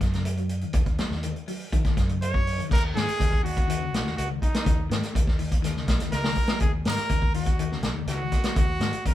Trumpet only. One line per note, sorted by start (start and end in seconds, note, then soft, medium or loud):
2.22 2.67 C#5 medium
2.72 2.83 A#4 loud
2.95 3.40 G#4 loud
3.43 4.13 F#4 medium
4.17 4.28 F#4 medium
4.42 4.87 D#4 medium
6.12 6.57 A#4 loud
6.61 6.72 G#4 medium
6.87 7.32 A#4 loud
7.35 7.80 F#4 medium
8.09 8.54 F#4 medium
8.57 9.02 F#4 medium
9.06 9.14 A#4 medium